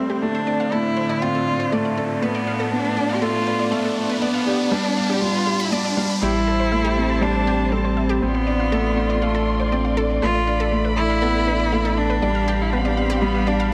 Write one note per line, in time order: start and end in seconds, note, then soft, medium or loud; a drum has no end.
0.00 0.19 A2 medium
0.00 0.21 G3 medium
0.00 0.25 G3 loud
0.00 0.23 A3 medium
0.00 0.24 C4 medium
0.00 0.25 C4 medium
0.00 2.19 C4 medium
0.00 riser medium
0.10 0.19 G4 medium
0.22 6.19 A2 medium
0.22 2.21 D3 medium
0.22 6.19 F3 medium
0.22 0.37 A3 medium
0.22 0.74 D4 medium
0.35 0.41 C5 medium
0.47 0.71 D4 medium
0.47 0.56 D5 medium
0.60 0.64 F5 medium
0.72 0.96 A3 medium
0.72 1.23 E4 loud
0.72 0.81 A4 medium
0.97 1.03 C5 medium
1.09 1.18 D5 medium
1.22 1.46 C4 medium
1.22 1.74 F4 loud
1.22 1.26 F5 medium
1.35 1.44 A4 medium
1.47 1.71 D4 medium
1.60 1.66 C5 medium
1.72 1.86 A3 medium
1.72 2.24 A3 medium
1.72 1.81 D5 medium
1.85 1.89 F5 medium
1.97 2.21 D4 medium
1.97 2.06 A4 medium
2.22 2.46 A3 medium
2.22 6.18 B3 medium
2.22 2.73 B3 loud
2.22 6.18 D4 medium
2.22 2.28 B4 medium
2.35 2.44 D5 medium
2.47 2.51 F5 medium
2.60 2.69 A4 medium
2.71 2.96 B3 medium
2.71 3.16 D4 loud
2.85 2.91 B4 medium
2.97 3.21 D4 medium
2.97 3.06 D5 medium
3.09 3.13 F5 medium
3.15 3.23 G4 medium
3.21 3.36 A3 loud
3.21 3.73 F4 loud
3.21 3.31 A4 medium
3.46 3.71 D4 medium
3.46 3.53 B4 medium
3.59 3.68 D5 medium
3.71 4.22 A3 medium
3.71 3.96 A3 medium
3.71 3.76 F5 medium
3.84 3.93 A4 medium
4.09 4.16 B4 medium
4.21 4.72 B3 loud
4.21 4.46 B3 medium
4.21 4.31 D5 medium
4.34 4.38 F5 medium
4.46 4.71 D4 medium
4.46 4.56 G4 medium
4.71 4.86 G3 loud
4.71 5.13 D4 loud
4.71 4.78 B4 medium
4.84 4.93 D5 medium
4.97 5.21 D4 medium
4.97 5.01 F5 medium
5.10 5.19 G4 medium
5.14 5.22 G4 medium
5.21 5.46 G3 medium
5.21 5.66 F4 loud
5.34 5.41 B4 medium
5.47 5.56 G4 medium
5.60 5.66 B5 loud
5.64 5.73 E4 medium
5.71 5.95 G3 medium
5.71 5.97 D4 medium
5.71 5.81 D5 loud
5.85 5.91 D5 medium
5.97 6.21 G3 medium
5.97 6.03 F5 medium
6.10 6.16 B5 medium
6.22 8.20 A1 medium
6.22 6.46 G3 medium
6.22 7.24 E4 loud
6.22 6.28 G4 loud
6.22 8.21 G4 medium
6.22 8.20 C5 medium
6.22 8.21 A5 medium
6.47 6.51 A4 medium
6.60 6.66 C5 medium
6.72 6.96 A3 medium
6.72 6.81 E5 medium
6.85 6.91 G4 loud
6.97 7.21 C4 medium
7.10 7.13 A4 medium
7.21 7.36 G3 loud
7.21 7.74 D4 loud
7.21 7.28 C5 medium
7.35 7.44 E5 medium
7.46 7.71 C4 medium
7.46 7.53 G4 loud
7.72 7.96 G3 medium
7.72 8.25 C4 medium
7.72 7.76 A4 medium
7.85 7.91 C5 medium
7.97 8.06 E5 medium
8.09 8.16 G4 loud
8.22 10.20 A1 medium
8.22 9.22 B3 loud
8.22 8.46 C4 medium
8.22 10.21 F4 medium
8.22 12.18 D5 medium
8.22 10.20 C6 medium
8.35 8.38 C5 medium
8.47 8.71 D4 medium
8.47 8.53 D5 medium
8.60 8.69 F5 medium
8.72 8.87 A3 loud
8.72 8.78 A4 loud
8.97 9.21 D4 medium
8.97 9.01 C5 medium
9.10 9.16 D5 medium
9.22 9.46 A3 medium
9.22 9.69 A3 medium
9.22 9.31 F5 medium
9.35 9.41 A4 loud
9.60 9.63 C5 medium
9.72 9.96 C4 medium
9.72 9.78 D5 medium
9.85 9.94 F5 medium
9.97 10.21 D4 medium
9.97 10.03 A4 loud
10.22 12.20 A1 medium
10.22 10.37 A3 medium
10.22 10.69 F4 loud
10.22 12.21 A4 medium
10.22 10.26 B4 medium
10.22 12.20 B5 loud
10.35 10.41 D5 medium
10.47 10.71 D4 medium
10.47 10.56 F5 medium
10.60 10.66 A4 loud
10.72 10.96 A3 medium
10.85 10.88 B4 medium
10.97 11.99 E4 loud
10.97 11.03 D5 medium
11.10 11.19 F5 medium
11.22 11.46 B3 medium
11.22 11.28 A4 loud
11.46 11.71 D4 medium
11.46 11.51 B4 medium
11.60 11.66 D5 medium
11.72 11.87 A3 medium
11.72 11.81 F5 medium
11.85 11.91 A4 loud
11.97 12.63 D4 loud
11.97 12.21 D4 medium
12.10 12.13 B4 medium
12.21 13.73 A1 medium
12.21 12.46 G3 medium
12.21 13.73 G4 medium
12.21 12.28 D5 medium
12.21 13.73 F5 medium
12.21 13.73 B5 medium
12.35 12.44 F5 medium
12.48 12.54 G4 loud
12.61 12.72 E4 medium
12.70 12.96 B3 medium
12.70 12.81 D4 medium
12.70 12.76 B4 medium
12.80 12.89 C4 medium
12.85 12.96 D4 medium
12.85 12.91 D5 medium
12.97 13.24 C4 medium
12.97 13.21 D4 medium
12.97 13.06 F5 medium
13.10 13.16 G4 loud
13.22 13.37 G3 loud
13.22 13.49 B3 loud
13.35 13.38 B4 medium
13.47 13.71 D4 medium
13.47 13.73 D4 medium
13.47 13.53 D5 medium
13.60 13.69 F5 medium